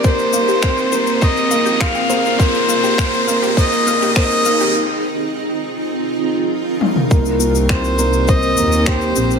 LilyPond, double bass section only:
\new Staff \with { instrumentName = "Double bass section" } { \clef bass \time 4/4 \key c \minor \tempo 4 = 102 f,,2~ f,,8 r4 c,8 | aes,,2~ aes,,8 c,4 ees,8 | r1 | c,2~ c,8 ees,4 bes,,8 | }